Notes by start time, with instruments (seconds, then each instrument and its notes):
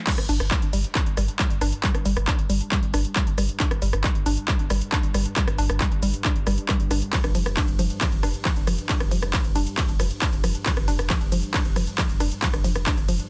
0.07 ambient pad G2, synth arpeggio sound G3, kick, clap, closed hi-hat, crash, shaker
0.18 sub bass G1, cross-stick, closed hi-hat
0.29 sub bass G1, synth arpeggio sound D4, open hi-hat, shaker
0.40 sub bass G1, cross-stick, closed hi-hat, shaker
0.51 synth arpeggio sound G3, kick, clap, closed hi-hat, shaker
0.62 sub bass G1, closed hi-hat
0.73 sub bass G1, synth arpeggio sound G3, open hi-hat, shaker
0.84 closed hi-hat, shaker
0.95 synth arpeggio sound D4, kick, clap, closed hi-hat, shaker
1.06 sub bass G1, closed hi-hat
1.17 sub bass G1, synth arpeggio sound G3, cross-stick, open hi-hat, shaker
1.28 closed hi-hat, shaker
1.39 synth arpeggio sound G3, kick, clap, closed hi-hat, shaker
1.50 sub bass G1, closed hi-hat, shaker
1.61 sub bass G1, synth arpeggio sound D4, cross-stick, open hi-hat, shaker
1.72 closed hi-hat, shaker
1.83 synth arpeggio sound G3, kick, clap, closed hi-hat, shaker
1.95 sub bass G1, cross-stick, closed hi-hat
2.05 sub bass G1, synth arpeggio sound G3, open hi-hat, shaker
2.17 sub bass G1, cross-stick, closed hi-hat, shaker
2.28 synth arpeggio sound D4, kick, clap, closed hi-hat, shaker
2.39 sub bass G1, closed hi-hat
2.50 sub bass G1, synth arpeggio sound G3, open hi-hat, shaker
2.61 closed hi-hat, shaker
2.72 synth arpeggio sound G3, kick, clap, closed hi-hat, shaker
2.83 sub bass G1, closed hi-hat
2.94 sub bass G1, synth arpeggio sound D4, cross-stick, open hi-hat, shaker
3.05 closed hi-hat, shaker
3.16 synth arpeggio sound G3, kick, clap, closed hi-hat, shaker
3.27 sub bass G1, closed hi-hat, shaker
3.38 sub bass G1, synth arpeggio sound G3, cross-stick, open hi-hat, shaker
3.49 closed hi-hat, shaker
3.60 synth arpeggio sound D4, kick, clap, closed hi-hat, shaker
3.71 sub bass G1, cross-stick, closed hi-hat
3.82 sub bass G1, synth arpeggio sound G3, open hi-hat, shaker
3.93 sub bass G1, cross-stick, closed hi-hat, shaker
4.04 synth arpeggio sound G3, kick, clap, closed hi-hat, shaker
4.15 sub bass G1, closed hi-hat
4.26 sub bass G1, synth arpeggio sound D4, open hi-hat, shaker
4.37 closed hi-hat, shaker
4.48 synth arpeggio sound G3, kick, clap, closed hi-hat, shaker
4.59 sub bass G1, closed hi-hat
4.70 sub bass G1, synth arpeggio sound G3, cross-stick, open hi-hat, shaker
4.81 closed hi-hat, shaker
4.92 synth arpeggio sound D4, kick, clap, closed hi-hat, shaker
5.03 sub bass G1, closed hi-hat, shaker
5.14 sub bass G1, synth arpeggio sound G3, cross-stick, open hi-hat, shaker
5.25 closed hi-hat, shaker
5.36 synth arpeggio sound G3, kick, clap, closed hi-hat, shaker
5.47 sub bass G1, cross-stick, closed hi-hat
5.58 sub bass G1, synth arpeggio sound D4, open hi-hat, shaker
5.70 sub bass G1, cross-stick, closed hi-hat, shaker
5.80 synth arpeggio sound G3, kick, clap, closed hi-hat, shaker
5.92 sub bass G1, closed hi-hat
6.03 sub bass G1, synth arpeggio sound G3, open hi-hat, shaker
6.14 closed hi-hat, shaker
6.25 synth arpeggio sound D4, kick, clap, closed hi-hat, shaker
6.36 sub bass G1, closed hi-hat
6.47 sub bass G1, synth arpeggio sound G3, cross-stick, open hi-hat, shaker
6.58 closed hi-hat, shaker
6.69 synth arpeggio sound G3, kick, cross-stick, clap, closed hi-hat, shaker
6.80 sub bass G1, closed hi-hat, shaker
6.91 sub bass G1, synth arpeggio sound D4, cross-stick, open hi-hat, shaker
7.02 closed hi-hat, shaker
7.13 synth arpeggio sound F3, kick, clap, closed hi-hat, ride, shaker
7.24 sub bass F1, cross-stick, closed hi-hat
7.35 sub bass F1, synth arpeggio sound F3, open hi-hat, shaker
7.46 sub bass F1, cross-stick, closed hi-hat, shaker
7.57 synth arpeggio sound D4, kick, clap, closed hi-hat, ride, shaker
7.68 sub bass F1, closed hi-hat
7.79 sub bass F1, synth arpeggio sound F3, open hi-hat, shaker
7.90 closed hi-hat, shaker
8.01 synth arpeggio sound F3, kick, clap, closed hi-hat, ride, shaker
8.12 sub bass F1, closed hi-hat
8.23 sub bass F1, synth arpeggio sound D4, cross-stick, open hi-hat, shaker
8.34 closed hi-hat, shaker
8.45 synth arpeggio sound F3, kick, clap, closed hi-hat, ride, shaker
8.56 sub bass F1, closed hi-hat, shaker
8.67 sub bass F1, synth arpeggio sound F3, cross-stick, open hi-hat, shaker
8.78 closed hi-hat, shaker
8.89 synth arpeggio sound D4, kick, clap, closed hi-hat, ride, shaker
9.00 sub bass F1, cross-stick, closed hi-hat
9.11 sub bass F1, synth arpeggio sound F3, open hi-hat, shaker
9.22 sub bass F1, cross-stick, closed hi-hat, shaker
9.33 synth arpeggio sound F3, kick, clap, closed hi-hat, ride, shaker
9.45 sub bass F1, closed hi-hat
9.55 sub bass F1, synth arpeggio sound D4, open hi-hat, shaker
9.67 closed hi-hat, shaker
9.78 synth arpeggio sound F3, kick, clap, closed hi-hat, ride, shaker
9.89 sub bass F1, closed hi-hat
10.00 sub bass F1, synth arpeggio sound F3, cross-stick, open hi-hat, shaker
10.11 closed hi-hat, shaker
10.22 synth arpeggio sound D4, kick, clap, closed hi-hat, ride, shaker
10.33 sub bass F1, closed hi-hat, shaker
10.44 sub bass F1, synth arpeggio sound F3, cross-stick, open hi-hat, shaker
10.55 closed hi-hat, shaker
10.66 synth arpeggio sound F3, kick, clap, closed hi-hat, ride, shaker
10.77 sub bass F1, cross-stick, closed hi-hat
10.88 sub bass F1, synth arpeggio sound D4, open hi-hat, shaker
10.99 sub bass F1, cross-stick, closed hi-hat, shaker
11.10 synth arpeggio sound F3, kick, clap, closed hi-hat, ride, shaker
11.21 sub bass F1, closed hi-hat
11.32 sub bass F1, synth arpeggio sound F3, open hi-hat, shaker
11.43 closed hi-hat, shaker
11.54 synth arpeggio sound D4, kick, clap, closed hi-hat, ride, shaker
11.65 sub bass F1, closed hi-hat
11.76 sub bass F1, synth arpeggio sound F3, cross-stick, open hi-hat, shaker
11.87 closed hi-hat, shaker
11.98 synth arpeggio sound F3, kick, clap, closed hi-hat, ride, shaker
12.09 sub bass F1, closed hi-hat, shaker
12.20 sub bass F1, synth arpeggio sound D4, cross-stick, open hi-hat, shaker
12.31 closed hi-hat, shaker
12.42 synth arpeggio sound F3, kick, clap, closed hi-hat, ride, shaker
12.53 sub bass F1, cross-stick, closed hi-hat, shaker
12.64 sub bass F1, synth arpeggio sound F3, open hi-hat, shaker
12.75 sub bass F1, cross-stick, closed hi-hat, shaker
12.86 synth arpeggio sound D4, kick, clap, closed hi-hat, ride, shaker
12.98 sub bass F1, closed hi-hat, shaker
13.08 sub bass F1, synth arpeggio sound F3, open hi-hat, shaker
13.20 closed hi-hat, shaker